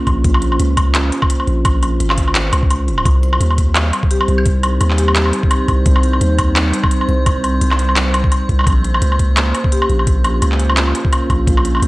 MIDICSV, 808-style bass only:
0, 0, Header, 1, 2, 480
1, 0, Start_track
1, 0, Tempo, 350877
1, 337, Time_signature, 4, 2, 24, 8
1, 16246, End_track
2, 0, Start_track
2, 0, Title_t, "808-style bass"
2, 0, Program_c, 0, 38
2, 94, Note_on_c, 0, 34, 98
2, 319, Note_off_c, 0, 34, 0
2, 335, Note_on_c, 0, 34, 95
2, 799, Note_off_c, 0, 34, 0
2, 815, Note_on_c, 0, 37, 97
2, 1519, Note_off_c, 0, 37, 0
2, 2016, Note_on_c, 0, 34, 96
2, 2720, Note_off_c, 0, 34, 0
2, 2737, Note_on_c, 0, 32, 99
2, 3440, Note_off_c, 0, 32, 0
2, 3457, Note_on_c, 0, 37, 94
2, 4160, Note_off_c, 0, 37, 0
2, 4176, Note_on_c, 0, 36, 100
2, 4640, Note_off_c, 0, 36, 0
2, 4656, Note_on_c, 0, 39, 98
2, 5359, Note_off_c, 0, 39, 0
2, 5859, Note_on_c, 0, 36, 96
2, 6561, Note_off_c, 0, 36, 0
2, 6577, Note_on_c, 0, 39, 96
2, 7280, Note_off_c, 0, 39, 0
2, 7775, Note_on_c, 0, 36, 98
2, 7999, Note_off_c, 0, 36, 0
2, 8016, Note_on_c, 0, 36, 100
2, 8480, Note_off_c, 0, 36, 0
2, 8496, Note_on_c, 0, 39, 99
2, 9200, Note_off_c, 0, 39, 0
2, 9693, Note_on_c, 0, 36, 95
2, 10398, Note_off_c, 0, 36, 0
2, 10414, Note_on_c, 0, 36, 98
2, 11359, Note_off_c, 0, 36, 0
2, 11616, Note_on_c, 0, 36, 98
2, 11840, Note_off_c, 0, 36, 0
2, 11856, Note_on_c, 0, 34, 97
2, 12320, Note_off_c, 0, 34, 0
2, 12336, Note_on_c, 0, 37, 100
2, 13040, Note_off_c, 0, 37, 0
2, 13536, Note_on_c, 0, 34, 99
2, 14240, Note_off_c, 0, 34, 0
2, 14255, Note_on_c, 0, 37, 99
2, 14959, Note_off_c, 0, 37, 0
2, 15454, Note_on_c, 0, 34, 101
2, 15679, Note_off_c, 0, 34, 0
2, 15694, Note_on_c, 0, 34, 99
2, 16159, Note_off_c, 0, 34, 0
2, 16172, Note_on_c, 0, 37, 99
2, 16246, Note_off_c, 0, 37, 0
2, 16246, End_track
0, 0, End_of_file